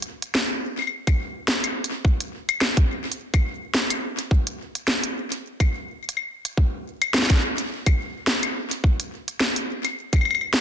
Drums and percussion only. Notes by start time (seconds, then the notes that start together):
0.02 closed hi-hat
0.22 closed hi-hat
0.35 snare
0.79 claves
0.82 claves
0.87 claves
1.07 kick, closed hi-hat, claves
1.48 snare
1.64 closed hi-hat, claves
1.84 closed hi-hat
2.05 kick
2.20 closed hi-hat
2.49 closed hi-hat, claves
2.61 snare, claves
2.77 kick, closed hi-hat
3.12 closed hi-hat
3.34 kick, closed hi-hat, claves
3.74 snare
3.90 closed hi-hat, claves
4.19 closed hi-hat
4.31 kick
4.47 closed hi-hat
4.75 closed hi-hat
4.88 snare
5.04 closed hi-hat
5.32 closed hi-hat
5.60 kick, closed hi-hat, claves
6.09 closed hi-hat
6.17 claves
6.45 closed hi-hat
6.57 kick
7.02 closed hi-hat, claves
7.14 snare, claves
7.18 snare
7.22 snare
7.26 kick, snare
7.30 snare, closed hi-hat
7.33 snare
7.36 snare
7.39 snare
7.58 closed hi-hat
7.86 kick, closed hi-hat, claves
8.27 snare
8.43 closed hi-hat, claves
8.71 closed hi-hat
8.84 kick
9.00 closed hi-hat
9.28 closed hi-hat
9.40 snare
9.56 closed hi-hat
9.85 closed hi-hat, claves
10.13 kick, closed hi-hat, claves
10.16 claves
10.21 claves
10.25 claves
10.31 claves
10.35 claves
10.41 claves
10.54 snare